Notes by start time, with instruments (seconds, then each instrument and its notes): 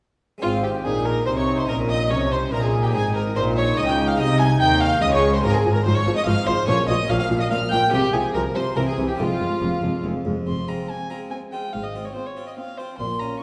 0.38 harpsichord G#3 C4 D#4
0.42 double bass section G#1, harpsichord G#2, cello section G#2, viola section C4, violin F4, violin section F4 F5
0.63 violin G4, violin section G4 G5
0.84 double bass section A#1, harpsichord A#2, cello section A#2, viola section D#4, violin G#4, violin section G#4 G#5
1.05 violin A#4, violin section A#4 A#5
1.26 double bass section C2, harpsichord C3, cello section C3, viola section D#4, violin section C5 C6, violin C5
1.37 violin section C#5 C#6, violin C#5
1.57 violin section C5 C6, violin C5
1.66 double bass section A#1, cello section A#2, harpsichord A#2 C#4 D#4, violin section A#4 A#5, violin A#4
1.89 violin section D#5 D#6, violin D#5
2.10 double bass section C2, harpsichord C3, cello section C3, viola section C#4, violin C#5, violin section C#5 C#6
2.31 violin C5, violin section C5 C6
2.52 double bass section A#1, harpsichord A#2, cello section A#2, viola section D#4, violin A#4, violin section A#4 A#5
2.63 violin G#4, violin section G#4 G#5
2.83 violin G4, violin section G4 G5
2.89 harpsichord G#3 C4 D#4
2.94 double bass section G#1, harpsichord G#2, cello section G#2, violin G#4, violin section G#4 G#5
3.15 violin A#4, violin section A#4 A#5
3.36 double bass section A#1, harpsichord A#2, cello section A#2, viola section D#4, violin C5, violin section C5 C6
3.56 violin C#5, violin section C#5 C#6
3.77 double bass section C#2, harpsichord C#3, cello section C#3, violin D#5, violin section D#5 D#6
3.87 violin G5, violin section G5 G6
4.08 violin F5, violin section F5 F6
4.15 harpsichord G#3 C4 D#4, violin D#5
4.19 double bass section C2, harpsichord C3, cello section C3, violin section D#5 D#6
4.39 violin G#5, violin section G#5 G#6
4.60 double bass section D#2, cello section D#3, harpsichord D#3, violin G5, violin section G5 G6
4.80 violin F5, violin section F5 F6
5.01 double bass section C#2, harpsichord C#3, cello section C#3, viola section G#3, violin D#5, violin section D#5 D#6
5.11 violin C#5, violin section C#5 C#6
5.33 violin C5, violin section C5 C6
5.40 double bass section G#1, harpsichord G#3 C4 F4, violin A#4, violin section A#4
5.44 cello section G#2, harpsichord G#2, viola section F3, violin section A#5
5.54 violin G#4, violin section G#4 G#5
5.65 double bass section G#1, harpsichord G#2, cello section G#2, viola section F3
5.74 violin A#4, violin section A#4 A#5
5.85 double bass section G#1, harpsichord G#2, cello section G#2, viola section F3, violin C5, violin section C5 C6
5.95 violin C#5, violin section C#5 C#6
6.05 double bass section G#1, cello section G#2, harpsichord G#2, viola section F3
6.16 violin D#5, violin section D#5 D#6
6.26 double bass section G#1, cello section G#2, harpsichord G#2, viola section F3, violin F5, violin section F5 F6
6.46 double bass section G#1, harpsichord G#2, cello section G#2, viola section F3, violin section C5 C6, violin C5
6.65 double bass section A#1, harpsichord A#2 C#4 F4, cello section A#2, viola section F3, violin C#5, violin section C#5 C#6
6.87 double bass section A#1, cello section A#2, harpsichord A#2, viola section F3, violin section D#5 D#6, violin D#5
7.09 double bass section A#1, harpsichord A#2, cello section A#2, viola section F3, violin section F5 F6, violin F5
7.19 violin section F5 F6, violin F5
7.30 double bass section A#1, harpsichord A#2, cello section A#2, viola section F3
7.40 violin section D#5 D#6, violin D#5
7.50 double bass section A#1, harpsichord A#2, cello section A#2, viola section F3, violin F5, violin section F5 F6
7.71 double bass section A#1, harpsichord A#2, cello section A#2, viola section F3, violin G5, violin section G5 G6
7.88 harpsichord G#3 C4 F4
7.92 double bass section C2, harpsichord C3, cello section C3, viola section F3, violin G4, violin section G4 G5
8.13 double bass section C2, harpsichord C3, cello section C3, viola section F3, violin G#4, violin section G#4 G#5
8.34 double bass section C2, harpsichord C3, cello section C3, viola section F3, violin A#4, violin section A#4 A#5
8.54 double bass section C2, harpsichord C3, cello section C3, viola section F3, violin section C5 C6, violin C5
8.73 double bass section C2, harpsichord C3 C4 E4, cello section C3, viola section E3, violin A#4, violin section A#4 A#5
8.87 violin section G#4 G#5, violin G#4
8.97 double bass section C2, cello section C3, harpsichord C3, viola section E3
9.08 violin G4, violin section G4 G5
9.14 harpsichord G#3 C4 F4
9.18 double bass section F1, harpsichord F2, cello section F2, viola section G#3, violin section F4 F5, violin F4
9.40 double bass section F1, harpsichord F2, cello section F2, viola section G#3
9.61 double bass section F1, harpsichord F2, cello section F2, viola section G#3
9.82 double bass section F1, harpsichord F2, cello section F2, viola section G#3
10.04 double bass section F1, harpsichord F2, cello section F2, viola section G#3
10.25 double bass section F1, harpsichord F2, cello section F2, viola section G#3
10.47 double bass section F1, harpsichord F2, cello section F2, violin C6
10.68 harpsichord G#3 C4 F4, violin A#5
10.89 viola section C4, violin section G#4 C5, violin G#5
11.10 harpsichord G#3 C4 F4, violin A#5
11.31 viola section C4, violin section G#4 C5, violin G#5
11.52 harpsichord G#3 C4 F4, violin G5
11.73 double bass section G#1, harpsichord G#2, cello section G#2, violin F5
11.83 violin D#5
11.95 harpsichord C4 F4
12.05 violin C#5
12.15 viola section C4, violin section F4 C5, violin C5
12.26 violin C#5
12.37 harpsichord C4 F4
12.47 violin D#5
12.57 viola section C4, violin section F4 C5, violin F5
12.78 harpsichord C4 F4, violin C5
12.98 double bass section A#1, cello section A#2, harpsichord A#2, violin C6
13.19 harpsichord C#4 F4, violin A#5
13.40 violin C#6